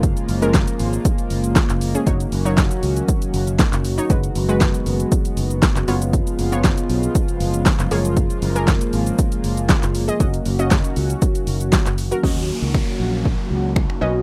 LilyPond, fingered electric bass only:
\new Staff \with { instrumentName = "Fingered electric bass" } { \clef bass \time 4/4 \key dis \minor \tempo 4 = 118 fis,,8 fis,,4 gis,,8 r8 fis,,8. fis,,8. | fis,,8 fis,,4 cis,8 r8 fis,,8. fis,,8. | fis,,8 fis,,4 fis,,8 r8 fis,,8. fis,,16 fis,,8~ | fis,,8 fis,,4 b,,8 r8 fis,,8. fis,,16 fis,,8~ |
fis,,8 fis,,4 gis,,8 r8 fis,,8. fis,,8. | fis,,8 fis,,4 cis,8 r8 fis,,8. fis,,8. | dis,8. cis,8 r16 ais,,4 cis,4 b,,8 | }